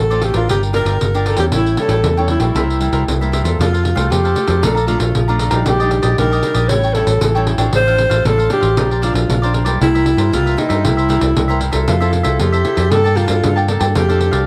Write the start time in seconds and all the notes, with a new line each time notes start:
Already playing: A2 A4
0.00 A1
0.10 A3 C4 F4 A4 C5 D5, pandeiro
0.22 F4 G4 A4 C5 D5, pandeiro
0.34 A1 D4 F4 A4 A#4 C5 D5, pandeiro
0.49 G1 G3 F4 G4 A#4 D5 G5, pandeiro
0.63 pandeiro
0.73 D4 F4 A#4 D5 G5, pandeiro
0.85 G1 F4 A#4 D5 G5, pandeiro
1.01 G1, pandeiro
1.14 D4 F4 A#4 D5 G5, pandeiro
1.26 F4 A4 A#4 D5 G5, pandeiro
1.36 E2 G3 C#4 E4 G4 A#4 D5 G5, pandeiro
1.52 A1 A2 E4 A4 C#5 G5, pandeiro
1.56 E4
1.66 pandeiro
1.77 G3 C#4 E4 A4 C#5 G5, pandeiro
1.89 A1 E4 A4 C#5 G5, pandeiro
2.03 E2 E3, pandeiro
2.17 G3 C#4 E4 A4 C#5 G5, pandeiro
2.28 E4 A4 C#5 G5, pandeiro
2.40 A#1 G3 A#3 E4 A4 C#5 G5, pandeiro
2.55 C2 C3 E4 A#4 C5 E5, pandeiro
2.70 pandeiro
2.80 G3 A#3 E4 A#4 C5 E5, pandeiro
2.92 C2 E4 A#4 C5 E5, pandeiro
3.08 C2 G2, pandeiro
3.21 G3 A#3 E4 A#4 C5 E5, pandeiro
3.32 E4 A#4 C5 E5, pandeiro
3.43 E2 C4 F4 A4 A#4 C5 E5, pandeiro
3.59 F2 F3 F4 A4 C5 F5, pandeiro
3.73 A4 C5 F5, pandeiro
3.83 muted cavaquinho stroke, pandeiro
3.95 C2 A3 C4 F4 A4 C5 F5, pandeiro
4.10 F2 C3 F4 G4 A4 C5 F5, pandeiro
4.24 A4 C5 F5, pandeiro
4.35 A3 C4 F4, pandeiro
4.47 F2 A4 C5 F5, pandeiro
4.62 A#1 A#2 A3 D4 F4 A4 D5 F5 A#5, pandeiro
4.75 D5 F5 A#5, pandeiro
4.87 A3 D4 F4 A4 D5 F5 A#5, pandeiro
4.99 A#1, muted cavaquinho stroke, pandeiro
5.15 A#1 F3, pandeiro
5.28 A3 D4 F4 D5 F5 A#5, pandeiro
5.39 A4 D5 F5 A#5, pandeiro
5.50 A#1 G3 D4 D#4 D5 F5 A#5, pandeiro
5.65 A#1 A#2 D4 G4 D5 D#5, pandeiro
5.79 G3 D4 D#4 G4 D5 D#5, pandeiro
5.91 muted cavaquinho stroke, pandeiro
6.02 A#1 G4 D5 D#5, pandeiro
6.18 A#1 A#2 G3 D4 D#4 G4 A#4 D5 D#5, pandeiro
6.32 G4 D5 D#5, pandeiro
6.43 G3 D4 D#4, pandeiro
6.54 A#1 G4 D5 D#5, pandeiro
6.68 A1 A2 G3 C#4 E4 A4 C#5 G5, pandeiro
6.83 A4 C#5 G5, pandeiro
6.94 G3 C#4 E4 A4 C#5 G5, pandeiro
7.06 A1, muted cavaquinho stroke, pandeiro
7.21 A1 E3, pandeiro
7.35 G3 C#4 E4 A4 C#5 G5, pandeiro
7.47 E4 A4 C#5 G5, pandeiro
7.58 A1 F3 C4 D4 A4 C#5 G5, pandeiro
7.73 A1 A2 D4 A4 C5 F5, pandeiro
7.87 F3 C4 D4 A4 C5 F5, pandeiro
7.97 muted cavaquinho stroke, pandeiro
8.10 A1 A4 C5 F5, pandeiro
8.24 A1 A2 F3 C4 D4 A4 C5 F5, pandeiro
8.38 A4 C5 F5, pandeiro
8.50 F3 C4 D4 G4, pandeiro
8.60 A1 A4 C5 F5, pandeiro
8.76 A#1 A#2 F3 C4 D4 A#4 C5 D5, pandeiro
8.91 A#4 C5 D5, pandeiro
9.02 F3 C4 D4 F4 A#4 C5 D5, pandeiro
9.13 A#1, muted cavaquinho stroke, pandeiro
9.29 A#1 F3, pandeiro
9.42 F3 C4 D4 A#4 C5 D5, pandeiro
9.53 D4 A#4 C5 D5, pandeiro
9.65 B1 G3 A#3 E4 A#4 C5 D5, pandeiro
9.81 C2 C3 E4 A#4 C5 E5, pandeiro
9.95 G3 A#3 E4 A#4 C5 E5, pandeiro
10.06 muted cavaquinho stroke, pandeiro
10.17 G2 A#4 C5 E5, pandeiro
10.32 C2 G2 G3 A#3 E4 F4 A#4 C5 E5, pandeiro
10.46 A#4 C5 E5, pandeiro
10.57 G3 A#3 D#4 E4, pandeiro
10.69 G2 A#4 C5 E5, pandeiro
10.84 C2 C3 E4 A#4 C5 E5, pandeiro
10.97 A#4 C5 E5, pandeiro
11.09 G3 A#3 E4 A#4 C5 E5, pandeiro
11.21 C2, muted cavaquinho stroke, pandeiro
11.36 C2 G2, pandeiro
11.48 G3 A#3 E4 A#4 C5 E5, pandeiro
11.60 E4 A#4 C5 E5, pandeiro
11.72 C2 C4 E4 A4 A#4 C5 E5, pandeiro
11.87 F2 F3 F4 A4 C5 E5, pandeiro
12.00 C4 E4 A4 C5 E5, pandeiro
12.12 muted cavaquinho stroke, pandeiro
12.23 C2 C4 E4 A4 C5 E5, pandeiro
12.39 F2 C3 F4 G4 A4 C5 E5, pandeiro
12.52 A4 C5 E5, pandeiro
12.65 C4 E4 A4, pandeiro
12.75 F2 A4 C5 E5, pandeiro
12.90 G2 G3 A#3 D4 A4 A#4 D5 G5 A5, pandeiro
13.04 A#3 D4 A4 D5 G5 A5, pandeiro
13.15 F4 A#4 D5 G5 A5, pandeiro
13.26 G2 A#3 D4 A4, muted cavaquinho stroke, pandeiro
13.44 G2 D3, pandeiro
13.56 D5 G5 A5, pandeiro
13.67 A#3 D4 A4 A#4 D5 G5 A5, pandeiro
13.79 G2 D5 G5 A5, pandeiro
13.94 F2 F3 C4 D4 G4 A4 D5 F5, pandeiro
14.08 C4 D4 A4 D5 F5, pandeiro
14.19 muted cavaquinho stroke, pandeiro
14.31 C2 A4 D5 F5, pandeiro